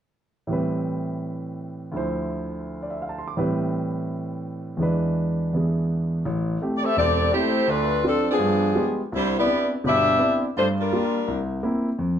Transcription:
0.47 A2 E3 G3 C4
0.52 B4
1.92 D2 D3 F3
1.96 E4 C5
2.82 D5
2.90 E5
3.02 F5
3.09 A5
3.18 C6
3.28 D6
3.37 A2 E3 G3 C4 B4
4.77 E2 E3 G#3
4.81 D4 B4
5.53 E3 B3 G#4
6.25 A1
6.62 A3 C4 G4
6.78 D5
6.85 C4 G4 A4 E5
6.97 E1 C4 G4 A4 D5
7.32 A3 C4 E4 G4 C5
7.67 D2 A3 D4 F4 B4
8.03 F3 C4 D4 F4 A4
8.08 D4
8.31 F3 B3 D4 G#4
8.38 G2
8.75 G#3 B3 F4 G4
9.12 C2 G3 D4 E4 C5
9.39 B3 E4 G4 D5
9.46 B3 C4 D4 E4
9.84 G1 B2 D4 G4 B4 E5
10.19 B3 C4 D4 E4
10.57 G2 A3 D4 F4 C5
10.80 G3 D4 F4 A#4
10.93 G3 A#3 F4
11.28 C2
11.63 A#3 C4 E4
11.99 F2

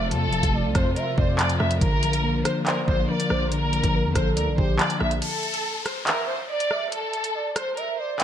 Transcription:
Already playing: F1 C3 F3 A3 C4 F4 C5 E5
0.11 F2 C3 A4, closed hi-hat
0.27 F1
0.33 F3, closed hi-hat
0.43 F1, kick, closed hi-hat
0.54 A3 D5
0.64 C2
0.75 F2 C4 C5, kick, cross-stick, closed hi-hat
0.96 A#4 C5 E5, closed hi-hat
1.18 F2 C3 C5 D5, kick
1.39 F3 D5, clap, closed hi-hat
1.49 closed hi-hat
1.60 F2 A3 E5, cross-stick
1.71 closed hi-hat
1.81 A#1 D3 A#3 A#4, kick, closed hi-hat
2.03 F3, closed hi-hat
2.13 closed hi-hat
2.24 A#3
2.45 D4 C5, cross-stick, closed hi-hat
2.66 A#4 C5 D5, clap, closed hi-hat
2.88 A#1 D3 C5, kick
3.09 F3 A#4 D5
3.20 closed hi-hat
3.30 A#1 A#3 C5, cross-stick
3.51 D3 A#4, closed hi-hat
3.73 F3, closed hi-hat
3.84 A#1, kick, closed hi-hat
3.94 A#3 A#4
4.05 F2
4.15 A#1 D4 A4 C5, kick, cross-stick, closed hi-hat
4.36 D2 A#4 D5, closed hi-hat
4.47 A#1
4.57 A#1 D3 G4 C5, kick
4.79 F3 D5, clap, closed hi-hat
4.90 closed hi-hat
5.00 A#1 A#3 E5, cross-stick
5.11 closed hi-hat
5.22 A4, closed hi-hat, downlifter
5.43 closed hi-hat
5.54 closed hi-hat
5.85 C5, cross-stick, closed hi-hat
6.07 A#4 E5, clap, closed hi-hat
6.28 C5
6.49 D5
6.60 closed hi-hat
6.71 E5, cross-stick
6.92 A4, closed hi-hat
7.13 closed hi-hat
7.24 closed hi-hat
7.35 D5
7.56 C5, cross-stick, closed hi-hat
7.77 A#4 E5, closed hi-hat
7.98 C5 D5
8.20 D5, clap, closed hi-hat

